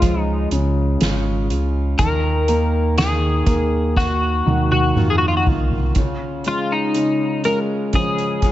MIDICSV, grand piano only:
0, 0, Header, 1, 2, 480
1, 0, Start_track
1, 0, Key_signature, -5, "major"
1, 0, Tempo, 988468
1, 965, Time_signature, 4, 2, 24, 8
1, 4137, End_track
2, 0, Start_track
2, 0, Title_t, "Grand piano"
2, 0, Program_c, 0, 0
2, 0, Control_c, 0, 64, 127
2, 0, Note_on_c, 0, 49, 51
2, 0, Note_on_c, 0, 56, 58
2, 247, Note_off_c, 0, 49, 0
2, 254, Note_on_c, 0, 49, 50
2, 710, Note_off_c, 0, 56, 0
2, 949, Note_off_c, 0, 49, 0
2, 969, Note_on_c, 0, 51, 64
2, 972, Control_c, 0, 64, 0
2, 1046, Control_c, 0, 64, 127
2, 1207, Note_on_c, 0, 58, 47
2, 1439, Note_off_c, 0, 51, 0
2, 1446, Note_on_c, 0, 51, 46
2, 1676, Note_off_c, 0, 58, 0
2, 1684, Note_on_c, 0, 58, 51
2, 2160, Note_off_c, 0, 51, 0
2, 2167, Note_on_c, 0, 51, 50
2, 2633, Note_off_c, 0, 58, 0
2, 2874, Note_off_c, 0, 51, 0
2, 2895, Note_on_c, 0, 49, 48
2, 2899, Control_c, 0, 64, 0
2, 2973, Control_c, 0, 64, 127
2, 3138, Note_on_c, 0, 56, 39
2, 3368, Note_off_c, 0, 49, 0
2, 3375, Note_on_c, 0, 49, 35
2, 3610, Note_off_c, 0, 56, 0
2, 3617, Note_on_c, 0, 56, 44
2, 3850, Note_off_c, 0, 49, 0
2, 3857, Note_on_c, 0, 49, 47
2, 4137, Note_off_c, 0, 49, 0
2, 4137, Note_off_c, 0, 56, 0
2, 4137, End_track
0, 0, End_of_file